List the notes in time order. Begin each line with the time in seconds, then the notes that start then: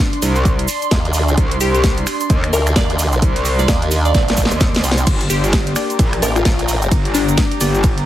Already playing: D4 D5 C6
0.13 closed hi-hat
0.22 C2, open hi-hat, cabasa
0.35 closed hi-hat, cabasa
0.45 kick, closed hi-hat, cabasa
0.59 closed hi-hat
0.68 open hi-hat, cabasa
0.82 closed hi-hat, cabasa
0.91 D#2, kick, snare, closed hi-hat, cabasa
1.05 closed hi-hat
1.13 open hi-hat, cabasa
1.28 closed hi-hat, cabasa
1.38 C2, kick, closed hi-hat, cabasa
1.51 closed hi-hat
1.60 C2 G4, open hi-hat, cabasa
1.75 G4, closed hi-hat, cabasa
1.84 kick, snare, closed hi-hat, cabasa
1.98 closed hi-hat
2.07 finger snap, open hi-hat, cabasa
2.20 closed hi-hat, cabasa
2.30 D#2, kick, closed hi-hat, cabasa
2.44 finger snap, closed hi-hat
2.53 D2 A#4, open hi-hat, cabasa
2.67 finger snap, closed hi-hat, cabasa
2.76 D#2 D5, kick, snare, closed hi-hat, cabasa
2.90 closed hi-hat
2.99 open hi-hat, cabasa
3.12 closed hi-hat, cabasa
3.22 C2, kick, closed hi-hat, cabasa
3.36 closed hi-hat
3.45 open hi-hat, cabasa
3.59 D5, snare, closed hi-hat, cabasa
3.68 D#2, kick, snare, closed hi-hat, cabasa
3.82 closed hi-hat
3.91 open hi-hat, cabasa
4.05 D5, closed hi-hat, cabasa
4.14 A#1 D5, kick, snare, closed hi-hat, cabasa
4.28 snare, closed hi-hat
4.37 kick, open hi-hat, cabasa
4.45 snare
4.51 D#2, closed hi-hat, cabasa
4.60 kick, snare, closed hi-hat, cabasa
4.75 snare, closed hi-hat
4.84 C2, open hi-hat, cabasa
4.91 snare
4.98 closed hi-hat, cabasa
5.06 G1 G4, kick, closed hi-hat, crash, ride, cabasa
5.21 closed hi-hat
5.30 G1 G4, open hi-hat, cabasa
5.44 G4, closed hi-hat, cabasa
5.53 kick, snare, closed hi-hat, ride, cabasa
5.67 closed hi-hat
5.73 A#3 D4 G4 D5 A#5, finger snap, open hi-hat, cabasa
5.90 closed hi-hat, cabasa
5.99 A#1, kick, closed hi-hat, ride, cabasa
6.13 finger snap, closed hi-hat
6.22 A1 A#3 D4 G4 A#4 D5, open hi-hat, cabasa
6.36 F4, finger snap, closed hi-hat, cabasa
6.45 A#1 F4, kick, snare, closed hi-hat, ride, cabasa
6.59 closed hi-hat
6.68 open hi-hat, cabasa
6.82 closed hi-hat, cabasa
6.91 G1, kick, closed hi-hat, ride, cabasa
7.05 closed hi-hat
7.14 D4, open hi-hat, cabasa
7.28 closed hi-hat, cabasa
7.37 kick, snare, closed hi-hat, ride, cabasa
7.51 closed hi-hat
7.61 G1 A#3 D4 G4 D5, open hi-hat, cabasa
7.75 closed hi-hat, cabasa
7.83 kick, closed hi-hat, ride, cabasa
7.98 closed hi-hat